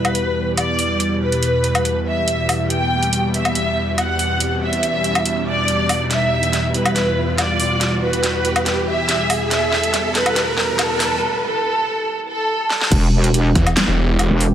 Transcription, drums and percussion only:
0.05 closed hi-hat, low woodblock
0.15 closed hi-hat
0.57 closed hi-hat, low woodblock
0.79 open hi-hat
1.00 closed hi-hat
1.32 closed hi-hat
1.43 closed hi-hat
1.64 closed hi-hat
1.75 closed hi-hat, low woodblock
1.85 closed hi-hat
2.28 closed hi-hat
2.49 open hi-hat, low woodblock
2.70 closed hi-hat
3.03 closed hi-hat
3.13 closed hi-hat
3.34 closed hi-hat
3.45 closed hi-hat, low woodblock
3.55 closed hi-hat
3.98 closed hi-hat, low woodblock
4.19 open hi-hat
4.40 closed hi-hat
4.73 closed hi-hat
4.83 closed hi-hat
5.04 closed hi-hat
5.15 closed hi-hat, low woodblock
5.25 closed hi-hat
5.68 closed hi-hat
5.89 open hi-hat, low woodblock
6.11 snare, closed hi-hat
6.43 closed hi-hat
6.53 snare, closed hi-hat
6.74 closed hi-hat
6.86 closed hi-hat, low woodblock
6.96 snare, closed hi-hat
7.38 snare, closed hi-hat, low woodblock
7.60 open hi-hat
7.81 snare, closed hi-hat
8.13 closed hi-hat
8.23 snare, closed hi-hat
8.45 closed hi-hat
8.56 closed hi-hat, low woodblock
8.66 snare, closed hi-hat
9.09 snare, closed hi-hat
9.30 open hi-hat, low woodblock
9.51 snare, closed hi-hat
9.72 snare
9.83 closed hi-hat
9.94 snare, closed hi-hat
10.15 snare, closed hi-hat
10.26 closed hi-hat, low woodblock
10.36 snare, closed hi-hat
10.57 snare
10.79 snare, closed hi-hat, low woodblock
11.00 snare, open hi-hat
12.70 snare
12.81 snare
12.92 kick, closed hi-hat, crash
13.24 closed hi-hat
13.34 closed hi-hat
13.55 kick, closed hi-hat
13.67 closed hi-hat, low woodblock
13.77 snare, clap, closed hi-hat
14.19 closed hi-hat, low woodblock
14.41 open hi-hat

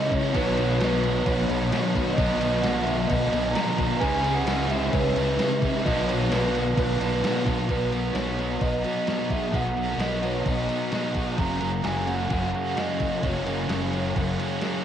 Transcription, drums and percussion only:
0.12 kick, crash
0.35 kick, crash
0.57 crash
0.81 snare, crash
1.04 crash
1.26 kick, crash
1.50 crash
1.73 snare, crash
1.95 kick, crash
2.18 kick, crash
2.41 crash
2.64 snare, crash
2.87 crash
3.10 kick, crash
3.33 crash
3.55 snare, crash
3.68 snare
3.78 kick, crash
4.01 kick, crash
4.24 crash
4.47 snare, crash
4.70 crash
4.93 kick, crash
5.16 crash
5.39 snare, crash
5.62 kick, crash
5.86 kick, crash
6.09 crash
6.32 snare, crash
6.55 crash
6.78 kick, crash
7.01 crash
7.24 snare, crash
7.46 kick, crash
7.69 kick, crash
7.93 crash
8.15 snare, crash
8.39 crash
8.61 kick, crash
8.84 crash
9.07 snare, crash
9.30 kick, crash
9.53 kick, crash
9.77 crash
9.99 snare, crash
10.23 crash
10.46 kick, crash
10.69 crash
10.92 snare, crash
11.04 snare
11.14 kick, crash
11.38 kick, crash
11.61 crash
11.84 snare, crash
12.07 crash
12.30 kick, crash
12.54 crash
12.77 snare, crash
13.00 kick, crash
13.23 kick, crash
13.46 crash
13.69 snare, crash
13.93 crash
14.16 kick, crash
14.40 crash
14.61 snare, crash

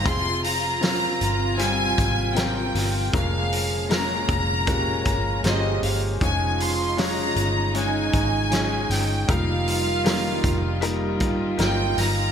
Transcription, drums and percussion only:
0.05 kick, hi-hat pedal, open hi-hat
0.44 hi-hat pedal, open hi-hat
0.82 snare, hi-hat pedal, open hi-hat
1.21 hi-hat pedal, open hi-hat
1.59 hi-hat pedal, open hi-hat
1.98 kick, hi-hat pedal, open hi-hat
2.36 snare, hi-hat pedal, open hi-hat
2.75 snare, hi-hat pedal, open hi-hat
3.13 kick, hi-hat pedal, open hi-hat
3.52 hi-hat pedal, open hi-hat
3.90 snare, hi-hat pedal, open hi-hat
4.29 kick, hi-hat pedal, open hi-hat
4.67 kick, hi-hat pedal, open hi-hat
5.05 kick, hi-hat pedal, open hi-hat
5.44 snare, hi-hat pedal, open hi-hat
5.83 hi-hat pedal, open hi-hat
6.21 kick, hi-hat pedal, open hi-hat
6.60 hi-hat pedal, open hi-hat
6.98 snare, hi-hat pedal, open hi-hat
7.36 hi-hat pedal, open hi-hat
7.75 hi-hat pedal, open hi-hat
8.13 kick, hi-hat pedal, open hi-hat
8.52 snare, hi-hat pedal, open hi-hat
8.90 snare, hi-hat pedal, open hi-hat
9.29 kick, hi-hat pedal, open hi-hat
9.67 hi-hat pedal, open hi-hat
10.05 snare, hi-hat pedal, open hi-hat
10.44 kick, hi-hat pedal, open hi-hat
10.82 hi-hat pedal, open hi-hat
11.20 kick, hi-hat pedal, open hi-hat
11.59 snare, hi-hat pedal, open hi-hat
11.98 snare, hi-hat pedal, open hi-hat

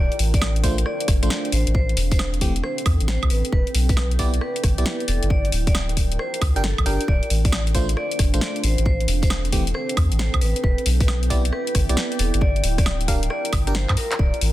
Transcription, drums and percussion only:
0.12 closed hi-hat
0.19 open hi-hat
0.34 kick, open hi-hat
0.41 snare, high woodblock
0.56 closed hi-hat
0.64 kick, open hi-hat
0.78 closed hi-hat
0.86 cross-stick
1.00 closed hi-hat
1.08 kick, cross-stick, open hi-hat
1.23 closed hi-hat
1.30 snare
1.45 closed hi-hat
1.52 open hi-hat
1.67 closed hi-hat
1.75 kick
1.89 closed hi-hat
1.97 open hi-hat
2.12 kick, open hi-hat
2.19 snare, high woodblock
2.34 closed hi-hat
2.41 kick, open hi-hat
2.56 closed hi-hat
2.64 cross-stick
2.78 closed hi-hat
2.86 kick, cross-stick, open hi-hat, high woodblock
3.00 closed hi-hat
3.08 snare, open hi-hat
3.23 kick, closed hi-hat, high woodblock
3.30 open hi-hat
3.45 closed hi-hat
3.53 kick
3.67 closed hi-hat
3.75 open hi-hat
3.89 kick, open hi-hat
3.97 snare, high woodblock
4.11 closed hi-hat
4.19 kick, open hi-hat
4.34 closed hi-hat
4.41 cross-stick
4.56 closed hi-hat
4.64 kick, cross-stick, open hi-hat
4.78 closed hi-hat
4.86 snare
5.00 closed hi-hat
5.08 open hi-hat
5.23 closed hi-hat
5.30 kick
5.45 closed hi-hat
5.52 open hi-hat
5.67 kick, open hi-hat
5.75 snare, high woodblock
5.89 closed hi-hat
5.97 kick, open hi-hat
6.12 closed hi-hat
6.19 cross-stick
6.34 closed hi-hat
6.41 kick, cross-stick, open hi-hat, high woodblock
6.56 closed hi-hat
6.64 snare, open hi-hat
6.78 kick, closed hi-hat, high woodblock
6.86 open hi-hat
7.01 closed hi-hat
7.08 kick
7.23 closed hi-hat
7.30 open hi-hat
7.45 kick, open hi-hat
7.52 snare, high woodblock
7.67 closed hi-hat
7.75 kick, open hi-hat
7.89 closed hi-hat
7.97 cross-stick
8.11 closed hi-hat
8.19 kick, cross-stick, open hi-hat
8.34 closed hi-hat
8.41 snare
8.56 closed hi-hat
8.64 open hi-hat
8.78 closed hi-hat
8.86 kick
9.01 closed hi-hat
9.08 open hi-hat
9.23 kick, open hi-hat
9.30 snare, high woodblock
9.45 closed hi-hat
9.52 kick, open hi-hat
9.67 closed hi-hat
9.75 cross-stick
9.89 closed hi-hat
9.97 kick, cross-stick, open hi-hat, high woodblock
10.12 closed hi-hat
10.19 snare, open hi-hat
10.34 kick, closed hi-hat, high woodblock
10.41 open hi-hat
10.56 closed hi-hat
10.64 kick
10.78 closed hi-hat
10.86 open hi-hat
11.00 kick, open hi-hat
11.08 snare, high woodblock
11.23 closed hi-hat
11.30 kick, open hi-hat
11.45 closed hi-hat
11.53 cross-stick
11.67 closed hi-hat
11.75 kick, cross-stick, open hi-hat
11.89 closed hi-hat
11.97 snare
12.12 closed hi-hat
12.19 open hi-hat
12.34 closed hi-hat
12.41 kick
12.56 closed hi-hat
12.64 open hi-hat
12.78 kick, cross-stick, open hi-hat
12.86 snare, high woodblock
13.01 closed hi-hat
13.08 kick, open hi-hat
13.23 closed hi-hat
13.30 cross-stick
13.45 closed hi-hat
13.53 kick, cross-stick, open hi-hat, high woodblock
13.67 closed hi-hat
13.75 snare, open hi-hat
13.89 kick, clap, closed hi-hat, high woodblock
13.97 open hi-hat
14.12 clap, closed hi-hat
14.19 kick
14.34 closed hi-hat
14.41 open hi-hat

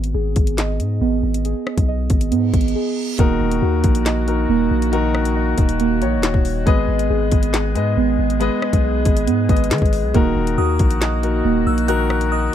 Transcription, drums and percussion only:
0.04 closed hi-hat
0.36 kick, closed hi-hat
0.47 closed hi-hat
0.58 snare, clap
0.80 closed hi-hat
1.34 closed hi-hat
1.45 closed hi-hat
1.67 cross-stick
1.77 kick, closed hi-hat
2.10 kick, closed hi-hat
2.21 closed hi-hat
2.32 closed hi-hat
2.54 kick, closed hi-hat
2.61 closed hi-hat
2.68 closed hi-hat
3.19 kick, closed hi-hat
3.51 closed hi-hat
3.84 kick, closed hi-hat
3.95 closed hi-hat
4.06 snare, clap
4.28 closed hi-hat
4.82 closed hi-hat
4.93 closed hi-hat
5.15 cross-stick
5.25 closed hi-hat
5.58 kick, closed hi-hat
5.69 closed hi-hat
5.80 closed hi-hat
6.02 closed hi-hat
6.23 snare, clap
6.34 kick
6.45 open hi-hat
6.67 kick, closed hi-hat
6.99 closed hi-hat
7.32 kick, closed hi-hat
7.43 closed hi-hat
7.54 snare, clap
7.76 closed hi-hat
8.30 closed hi-hat
8.41 closed hi-hat
8.62 cross-stick
8.73 kick, closed hi-hat
9.05 kick, closed hi-hat
9.17 closed hi-hat
9.27 closed hi-hat
9.49 kick, closed hi-hat
9.57 closed hi-hat
9.64 closed hi-hat
9.71 snare, clap, closed hi-hat
9.78 kick, closed hi-hat
9.86 closed hi-hat
9.93 open hi-hat
10.14 kick, closed hi-hat
10.47 closed hi-hat
10.79 kick, closed hi-hat
10.91 closed hi-hat
11.02 snare, clap
11.23 closed hi-hat
11.78 closed hi-hat
11.88 closed hi-hat
12.10 cross-stick
12.21 closed hi-hat

